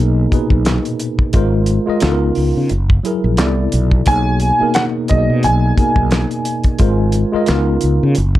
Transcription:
0.00 0.26 B1 medium
0.00 0.31 B2 medium
0.00 1.36 A#3 medium
0.00 0.33 D#4 medium
0.00 0.34 G#4 medium
0.00 0.29 A#4 medium
0.00 1.36 C#5 loud
0.00 1.36 D#5 medium
0.31 1.27 A#2 medium
0.31 1.27 B2 medium
0.31 1.28 D#4 medium
0.31 1.28 G#4 medium
0.31 1.29 B4 medium
0.31 kick medium
0.31 closed hi-hat medium
0.50 0.79 B1 medium
0.50 kick medium
0.65 snare medium
0.65 clap medium
0.65 closed hi-hat medium
0.85 closed hi-hat soft
1.00 closed hi-hat medium
1.19 kick medium
1.33 1.78 G#1 loud
1.33 1.83 G#3 medium
1.33 1.83 F4 medium
1.33 1.84 A#4 medium
1.33 1.84 C5 medium
1.33 kick loud
1.33 closed hi-hat medium
1.66 closed hi-hat medium
1.86 2.02 G#3 medium
1.86 2.02 F4 medium
1.86 2.03 A#4 medium
1.86 2.03 D#5 loud
1.86 muted fretless electric bass stroke soft
2.00 2.30 C#2 loud
2.00 2.65 C#3 medium
2.00 2.66 B3 medium
2.00 2.67 D#4 medium
2.00 2.67 F4 medium
2.00 snare loud
2.00 clap medium
2.00 closed hi-hat medium
2.05 2.11 A4 medium
2.11 2.71 A#4 loud
2.35 2.52 C#2 medium
2.35 open hi-hat soft
2.57 2.68 C#3 medium
2.69 2.98 F#1 medium
2.69 closed hi-hat medium
2.90 kick medium
3.03 3.38 F#3 medium
3.03 3.37 E4 medium
3.03 3.39 G#4 medium
3.03 3.40 A#4 medium
3.03 closed hi-hat medium
3.24 3.39 A#1 medium
3.37 3.67 C2 medium
3.37 4.02 C3 medium
3.37 4.02 B3 medium
3.37 4.02 E4 medium
3.37 4.03 A4 medium
3.37 4.03 D5 medium
3.37 snare medium
3.37 clap medium
3.37 closed hi-hat medium
3.72 4.01 B1 medium
3.72 closed hi-hat medium
3.91 kick medium
4.06 4.50 B1 loud
4.06 4.55 B2 medium
4.06 4.56 A#3 medium
4.06 4.56 D#4 medium
4.06 4.57 G#4 medium
4.06 4.57 C#5 medium
4.06 4.71 G#5 loud
4.06 kick loud
4.06 closed hi-hat medium
4.40 closed hi-hat medium
4.59 5.05 B2 medium
4.59 5.06 A#3 medium
4.59 5.06 D#4 medium
4.59 5.07 G#4 medium
4.59 5.07 A#4 medium
4.59 muted fretless electric bass stroke soft
4.74 4.83 F#5 medium
4.74 snare medium
4.74 clap medium
4.74 closed hi-hat medium
5.08 5.26 B1 medium
5.08 5.73 B2 medium
5.08 5.73 A#3 medium
5.08 5.74 D#4 medium
5.08 5.74 G#4 medium
5.08 5.41 D#5 medium
5.08 kick medium
5.08 closed hi-hat medium
5.12 5.18 D5 medium
5.18 5.78 D#5 medium
5.30 5.46 B2 medium
5.43 5.71 B1 medium
5.43 8.39 G#5 medium
5.43 closed hi-hat medium
5.77 6.73 B2 medium
5.77 6.73 A#3 medium
5.77 6.74 D#4 medium
5.77 6.74 G#4 medium
5.77 6.74 A#4 medium
5.77 kick medium
5.77 closed hi-hat medium
5.96 6.24 B1 medium
5.96 kick medium
6.11 snare loud
6.11 clap medium
6.11 closed hi-hat medium
6.31 closed hi-hat soft
6.45 closed hi-hat medium
6.64 kick medium
6.64 closed hi-hat soft
6.79 7.23 G#1 medium
6.79 7.28 G#3 medium
6.79 7.29 F4 medium
6.79 7.29 A#4 medium
6.79 7.30 C5 medium
6.79 kick loud
6.79 closed hi-hat medium
7.12 closed hi-hat medium
7.32 7.47 G#3 medium
7.32 7.48 F4 medium
7.32 7.49 A#4 medium
7.32 7.49 D#5 loud
7.32 muted fretless electric bass stroke soft
7.46 7.76 C#2 medium
7.46 8.11 C#3 medium
7.46 8.12 B3 medium
7.46 8.12 D#4 medium
7.46 snare medium
7.46 clap medium
7.46 closed hi-hat medium
7.50 8.13 F4 medium
7.50 8.13 A#4 loud
7.81 7.98 C#2 medium
7.81 closed hi-hat medium
8.03 8.14 C#3 medium
8.15 8.39 F#1 medium
8.15 closed hi-hat medium
8.35 kick medium

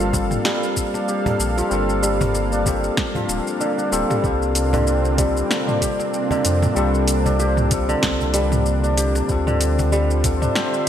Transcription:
0.00 0.38 G1 loud
0.00 1.56 F3 medium
0.00 0.13 G3 medium
0.00 0.44 G3 medium
0.00 4.24 G3 medium
0.00 9.30 A#3 medium
0.00 0.10 C4 medium
0.00 0.94 D4 medium
0.00 10.89 D4 medium
0.00 0.11 F4 medium
0.00 0.92 G4 medium
0.00 0.11 A4 medium
0.00 4.24 A4 medium
0.00 9.29 F5 medium
0.00 shaker soft
0.13 0.24 G3 medium
0.13 0.24 C4 medium
0.13 0.25 F4 medium
0.13 0.25 A4 medium
0.13 cajon bass medium
0.13 kick medium
0.13 shaker medium
0.31 mid tom medium
0.31 shaker soft
0.45 2.01 G3 loud
0.45 snare medium
0.45 shaker soft
0.63 shaker soft
0.77 kick medium
0.77 shaker medium
0.94 2.52 D4 medium
0.94 cajon slap medium
0.94 shaker soft
1.08 2.50 G4 medium
1.08 shaker soft
1.26 cajon bass medium
1.26 mid tom medium
1.26 shaker soft
1.39 1.62 A#1 medium
1.39 shaker medium
1.58 3.14 F3 medium
1.58 cajon slap medium
1.58 shaker soft
1.69 2.90 G1 loud
1.69 2.62 G3 medium
1.69 2.62 C4 medium
1.69 2.63 F4 medium
1.69 shaker soft
1.73 2.64 A4 loud
1.89 shaker soft
2.03 3.66 G3 medium
2.03 shaker medium
2.21 cajon bass medium
2.21 mid tom medium
2.21 shaker soft
2.35 cajon slap medium
2.35 shaker soft
2.52 3.78 D4 medium
2.52 shaker soft
2.64 3.89 G3 medium
2.64 3.89 C4 medium
2.64 3.90 F4 medium
2.64 3.92 G4 medium
2.64 kick medium
2.64 cajon bass loud
2.64 shaker medium
2.68 3.91 A4 medium
2.84 shaker soft
2.97 kick loud
2.97 snare medium
2.97 shaker soft
3.15 3.66 F3 medium
3.15 cajon bass medium
3.15 mid tom medium
3.15 shaker soft
3.29 3.41 D1 medium
3.29 cajon slap medium
3.29 shaker medium
3.47 shaker soft
3.60 4.29 D3 medium
3.60 shaker soft
3.78 5.46 D4 medium
3.78 shaker soft
3.91 4.04 D1 medium
3.91 4.20 G3 medium
3.91 4.20 C4 medium
3.91 4.21 F4 medium
3.91 4.23 G4 medium
3.91 4.21 A4 loud
3.91 shaker medium
4.10 4.29 G3 medium
4.10 cajon slap medium
4.10 mid tom medium
4.10 shaker soft
4.22 5.43 C2 loud
4.22 9.29 C3 medium
4.22 5.14 G3 medium
4.22 5.15 C4 medium
4.22 5.16 F4 medium
4.22 5.65 G4 medium
4.22 kick loud
4.22 shaker soft
4.26 5.16 A4 medium
4.34 10.19 C4 medium
4.42 shaker soft
4.55 closed hi-hat medium
4.55 shaker medium
4.73 6.30 D3 loud
4.73 cajon bass medium
4.73 mid tom medium
4.73 shaker soft
4.87 cajon slap medium
4.87 shaker soft
5.05 shaker soft
5.17 5.29 G3 medium
5.17 6.34 G3 medium
5.17 5.29 C4 medium
5.17 5.30 F4 medium
5.17 5.30 A4 medium
5.17 cajon bass medium
5.17 kick medium
5.17 closed hi-hat medium
5.17 shaker medium
5.37 shaker soft
5.51 snare medium
5.51 shaker soft
5.67 7.25 D4 medium
5.67 mid tom medium
5.67 shaker soft
5.81 7.23 G4 medium
5.81 kick medium
5.81 closed hi-hat medium
5.81 shaker medium
5.99 cajon slap medium
5.99 shaker soft
6.14 shaker soft
6.31 7.88 D3 medium
6.31 cajon bass medium
6.31 shaker soft
6.45 6.68 F2 medium
6.45 closed hi-hat medium
6.45 shaker medium
6.62 cajon slap medium
6.62 mid tom medium
6.62 shaker soft
6.74 7.96 C2 loud
6.74 7.67 G3 medium
6.74 7.92 G3 medium
6.74 7.68 C4 medium
6.74 7.68 F4 medium
6.74 7.69 A4 loud
6.74 shaker soft
6.95 shaker soft
7.08 closed hi-hat medium
7.08 shaker medium
7.26 8.83 D4 medium
7.26 cajon bass medium
7.26 shaker soft
7.40 8.81 G4 medium
7.40 cajon slap medium
7.40 shaker soft
7.57 mid tom medium
7.57 shaker soft
7.69 9.25 G3 medium
7.69 9.26 C4 medium
7.69 9.26 F4 medium
7.69 cajon bass medium
7.69 kick medium
7.69 closed hi-hat medium
7.69 shaker medium
7.74 9.27 A4 medium
7.89 9.34 D3 loud
7.89 shaker soft
8.03 9.22 C2 medium
8.03 kick medium
8.03 snare medium
8.03 shaker soft
8.21 cajon bass medium
8.21 shaker soft
8.34 9.34 G3 loud
8.34 cajon slap medium
8.34 closed hi-hat medium
8.34 shaker medium
8.52 mid tom medium
8.52 shaker soft
8.66 shaker soft
8.84 10.41 D4 medium
8.84 shaker soft
8.97 10.38 G4 medium
8.97 closed hi-hat medium
8.97 shaker medium
9.15 cajon slap medium
9.15 shaker soft
9.28 10.49 D2 loud
9.28 10.89 D3 medium
9.28 10.20 G3 medium
9.28 10.21 C4 medium
9.28 10.21 F4 medium
9.28 10.22 A4 medium
9.28 kick medium
9.28 shaker soft
9.47 10.89 D3 medium
9.47 mid tom medium
9.47 shaker soft
9.60 10.89 F4 medium
9.60 closed hi-hat medium
9.60 shaker medium
9.74 10.89 C5 medium
9.79 cajon bass medium
9.79 shaker soft
9.92 10.89 G3 loud
9.92 cajon slap medium
9.92 shaker soft
10.11 shaker soft
10.16 10.89 E5 medium
10.24 10.35 G3 medium
10.24 10.35 C4 medium
10.24 10.36 F4 medium
10.24 10.36 A4 medium
10.24 kick medium
10.24 cajon bass medium
10.24 closed hi-hat medium
10.24 shaker medium
10.42 10.89 D4 medium
10.42 mid tom medium
10.42 shaker soft
10.55 10.89 G4 medium
10.55 snare medium
10.55 shaker soft
10.74 shaker soft

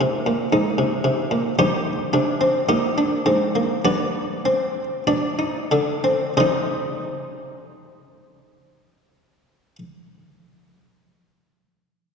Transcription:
0.00 0.26 C3 medium
0.00 1.54 C4 medium
0.00 0.49 F4 medium
0.00 1.54 A#4 medium
0.26 0.52 A#2 loud
0.53 0.78 G#2 loud
0.53 1.55 D#4 medium
0.78 1.03 C3 medium
1.04 1.30 C3 loud
1.31 1.57 A#2 medium
1.59 1.92 G2 medium
1.59 1.92 D#4 loud
1.59 2.65 G4 medium
1.59 3.81 C5 medium
2.13 2.48 C3 medium
2.13 2.40 D4 medium
2.41 2.68 C4 medium
2.69 3.04 A#2 medium
2.69 2.96 D#4 medium
2.69 3.81 G4 medium
2.98 3.25 D4 medium
3.26 3.62 G#2 medium
3.26 3.54 C4 medium
3.55 3.84 A#3 medium
3.85 5.04 G2 medium
3.85 4.22 B3 medium
3.85 6.33 B4 medium
3.85 5.04 D5 medium
4.45 4.84 C4 medium
5.07 5.47 B2 medium
5.07 5.38 D4 medium
5.07 6.33 D5 medium
5.39 5.70 D#4 medium
5.71 6.12 D3 medium
5.71 6.03 D4 medium
6.04 6.36 C4 medium
6.37 9.76 C3 medium
6.37 9.79 G3 medium
6.37 9.76 C4 medium
6.37 9.79 D#4 medium
6.37 9.76 C5 medium
6.37 9.76 D#5 medium

